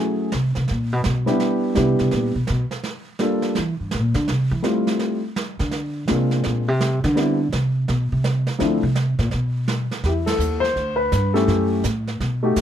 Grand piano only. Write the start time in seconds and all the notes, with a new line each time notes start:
Already playing: F#3 A3 C#4 E4 G#4
1.26 G3 B3 D4 E4 G4
1.75 G3 B3 D4 E4 G4
3.19 G3 A#3 D4 F4 A4
4.62 G3 A3 C4 E4 F4
6.08 G#3 A#3 C4 D4 F4
7.15 G3 B3 C4 D4 E4
8.59 F3 A3 C4 D4 E4
10.05 E4 G4
10.26 A4
10.60 C5
10.96 B4
11.34 A3 C#4 E4 G4 A4
12.43 A3 D#4 F#4 G4